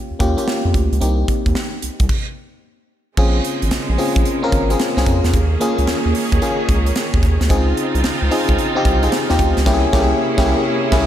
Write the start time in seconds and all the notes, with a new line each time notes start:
Already playing: A#3 C#4 F4 G4
0.11 D#2
0.19 D#2 A#3 C#4 F4 G4, kick, closed hi-hat
0.37 A#3 C#4 F4 G4, closed hi-hat
0.48 snare
0.65 F2
0.74 D2, kick, closed hi-hat
0.92 C#2, closed hi-hat
1.00 C2 A#3 C4 D#4 G4, closed hi-hat
1.28 kick, closed hi-hat
1.46 D#2, kick, closed hi-hat
1.55 snare
1.82 C2, closed hi-hat
2.00 C2, kick, closed hi-hat
2.09 kick, crash
3.17 A#1 C#3 G#3 A#3 C4 C#4 F4 G#4, kick, crash
3.45 closed hi-hat
3.62 G#1, closed hi-hat
3.71 A#1, snare, closed hi-hat
3.89 A#1
3.98 C4 C#4 F4 G#4, open hi-hat
4.16 A#1, kick, closed hi-hat
4.25 closed hi-hat
4.43 C4 C#4 F4 A#4
4.52 G#1, kick, closed hi-hat
4.70 C4 C#4 F4 G#4, closed hi-hat
4.79 snare, closed hi-hat
4.97 C2 C4 C#4 F4 G#4, snare
5.06 F2, kick, closed hi-hat
5.24 E2, snare, closed hi-hat
5.33 D#2 D#3 C#4 G#4, kick, closed hi-hat
5.60 A#3 C#4 F4 G#4, closed hi-hat
5.78 C#2, closed hi-hat
5.87 D#2, snare, closed hi-hat
6.06 D#2
6.15 open hi-hat
6.32 D#2, kick, closed hi-hat
6.41 A#3 C#4 F4 G#4, closed hi-hat
6.69 C#2, kick, closed hi-hat
6.86 closed hi-hat
6.96 snare, closed hi-hat
7.14 D#2, kick
7.23 D#2, kick, closed hi-hat
7.41 D2, snare, closed hi-hat
7.49 C#2 C#3 C4 D#4 F4 G#4, kick, closed hi-hat
7.77 closed hi-hat
7.95 C2, closed hi-hat
8.04 C#2, snare, closed hi-hat
8.22 C#2
8.31 C4 D#4 F4 G#4, open hi-hat
8.49 C#2, kick, closed hi-hat
8.59 closed hi-hat
8.75 C4 D#4 F4 G4
8.85 C2, kick, closed hi-hat
9.02 C4 D#4 F4 G#4, closed hi-hat
9.12 snare, closed hi-hat
9.29 D#2 C4 D#4 F4 G4, snare
9.39 D2, kick, closed hi-hat
9.57 C#2, snare, closed hi-hat
9.66 C2 C3 A#3 C#4 E4 G4 G#4, kick, snare, crash
9.73 G#4
9.92 C2 A#3 C#4 E4 G4, kick, snare
10.00 G#4
10.37 C2 A#3 C#4 E4 G4, kick, snare
10.45 G#4
10.92 C2 A#3 C#4 E4 G#4, kick, snare, crash